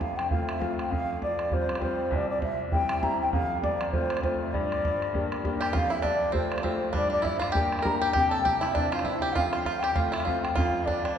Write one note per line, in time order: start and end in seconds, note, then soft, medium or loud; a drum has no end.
0.00 0.88 F2 medium
0.00 0.17 F5 medium
0.00 bodhran medium
0.16 0.29 G5 medium
0.16 bodhran medium
0.30 0.59 A3 soft
0.30 0.59 C4 soft
0.30 0.60 F4 soft
0.30 0.43 F5 medium
0.30 bodhran medium
0.43 0.49 F5 medium
0.47 0.61 E5 medium
0.47 bodhran medium
0.60 0.90 A3 soft
0.60 0.90 C4 soft
0.60 0.90 F4 medium
0.60 0.77 F5 medium
0.60 bodhran medium
0.78 0.91 G5 medium
0.78 bodhran medium
0.90 2.08 F2 medium
0.90 1.21 F5 loud
0.90 bodhran medium
1.22 1.54 D5 medium
1.22 bodhran medium
1.39 bodhran medium
1.51 1.79 G3 soft
1.51 1.79 C4 soft
1.51 1.80 F4 medium
1.51 1.81 C5 medium
1.51 bodhran medium
1.69 bodhran medium
1.75 bodhran medium
1.81 2.10 G3 soft
1.81 2.11 C4 soft
1.81 2.11 F4 medium
1.81 2.15 C5 medium
1.81 bodhran medium
2.11 3.28 C2 medium
2.11 2.29 D5 medium
2.11 bodhran medium
2.29 2.41 D5 medium
2.42 2.58 E5 medium
2.42 bodhran medium
2.72 3.01 G3 soft
2.72 3.01 C4 soft
2.72 3.02 E4 soft
2.72 3.04 G5 medium
2.72 bodhran medium
2.89 bodhran medium
3.03 3.32 G3 medium
3.03 3.32 C4 soft
3.03 3.32 E4 medium
3.03 3.20 A#5 medium
3.03 bodhran medium
3.21 3.31 G5 medium
3.32 4.50 F2 medium
3.32 3.60 F5 loud
3.32 bodhran medium
3.62 3.90 D5 medium
3.62 bodhran loud
3.81 bodhran medium
3.92 4.22 A3 soft
3.92 4.22 C4 soft
3.92 4.23 F4 medium
3.92 4.20 C5 medium
3.92 bodhran medium
4.10 bodhran medium
4.17 bodhran medium
4.23 4.52 A3 soft
4.23 4.53 C4 soft
4.23 4.53 F4 medium
4.23 4.39 C5 medium
4.23 bodhran medium
4.40 4.54 E5 medium
4.52 5.71 G2 medium
4.52 5.30 D5 medium
4.52 bodhran medium
4.72 bodhran medium
4.85 bodhran medium
5.02 bodhran soft
5.14 5.42 A#3 soft
5.14 5.43 D4 soft
5.14 5.43 G4 medium
5.14 bodhran medium
5.32 bodhran medium
5.44 5.73 A#3 soft
5.44 5.73 D4 medium
5.44 5.73 G4 medium
5.44 bodhran medium
5.61 5.73 G4 medium
5.61 5.75 G5 medium
5.61 bodhran medium
5.73 6.91 F2 medium
5.73 5.90 F4 medium
5.73 5.93 F5 loud
5.73 bodhran medium
5.90 6.02 E4 medium
5.90 6.05 E5 medium
6.02 6.31 D4 medium
6.02 6.34 D5 medium
6.02 bodhran medium
6.32 6.62 A3 soft
6.32 6.61 C4 medium
6.32 6.62 F4 soft
6.32 6.62 G4 medium
6.32 6.61 C5 medium
6.32 bodhran medium
6.52 bodhran medium
6.58 bodhran medium
6.62 6.93 A3 medium
6.62 6.92 C4 medium
6.62 6.93 F4 soft
6.62 6.93 G4 medium
6.62 6.91 C5 medium
6.62 bodhran medium
6.93 8.11 G2 medium
6.93 7.09 D4 medium
6.93 7.10 D5 loud
6.93 bodhran medium
7.10 7.22 D4 medium
7.10 7.25 D5 loud
7.22 7.39 E4 medium
7.22 7.40 E5 medium
7.22 bodhran medium
7.38 7.53 F4 medium
7.38 7.53 F5 medium
7.38 bodhran medium
7.51 7.83 A#3 medium
7.51 7.83 D4 soft
7.51 7.81 G4 medium
7.51 7.84 G4 medium
7.51 7.80 G5 loud
7.55 bodhran medium
7.72 bodhran medium
7.79 8.00 A#4 medium
7.79 7.97 A#5 loud
7.79 bodhran medium
7.84 8.14 A#3 medium
7.84 8.14 D4 soft
7.84 8.14 G4 medium
7.84 bodhran medium
7.98 8.12 G4 medium
7.98 8.11 G5 medium
8.12 9.32 C3 medium
8.12 8.30 G4 medium
8.12 8.30 G5 loud
8.12 bodhran medium
8.29 8.44 A4 medium
8.29 8.40 A5 loud
8.41 8.58 G5 medium
8.45 8.63 G4 medium
8.45 bodhran medium
8.59 8.74 E4 medium
8.59 8.74 E5 medium
8.63 bodhran medium
8.73 9.04 C4 medium
8.73 8.91 D4 medium
8.73 9.05 D4 soft
8.73 9.05 E4 soft
8.73 8.92 D5 medium
8.73 bodhran medium
8.90 9.06 F4 medium
8.90 9.05 F5 medium
8.90 bodhran medium
8.99 bodhran medium
9.03 9.35 C4 medium
9.03 9.35 D4 soft
9.03 9.21 E4 medium
9.03 9.35 E4 medium
9.03 9.19 E5 medium
9.03 bodhran medium
9.20 9.36 G4 medium
9.20 9.34 G5 medium
9.32 9.52 F4 medium
9.32 9.49 F5 loud
9.32 bodhran medium
9.36 10.53 F2 medium
9.50 9.65 F4 medium
9.50 9.62 F5 medium
9.50 bodhran medium
9.63 9.82 F4 medium
9.63 9.80 F5 medium
9.63 bodhran medium
9.79 9.93 G5 medium
9.79 bodhran medium
9.84 9.96 G4 medium
9.94 10.25 A3 soft
9.94 10.26 C4 soft
9.94 10.12 F4 medium
9.94 10.26 F4 medium
9.94 10.14 F5 medium
9.94 bodhran medium
10.12 10.25 E4 medium
10.12 10.24 E5 medium
10.12 bodhran medium
10.20 bodhran medium
10.25 10.56 A3 soft
10.25 10.56 C4 soft
10.25 10.54 F4 medium
10.25 10.57 F4 medium
10.25 10.41 F5 medium
10.25 bodhran medium
10.42 10.57 G5 medium
10.42 bodhran medium
10.55 11.18 F2 medium
10.55 10.87 F4 medium
10.55 10.86 F5 loud
10.55 bodhran medium
10.84 11.04 D4 medium
10.84 11.14 D5 medium
10.84 bodhran medium
11.05 11.18 D4 medium
11.05 bodhran medium
11.15 11.18 C5 medium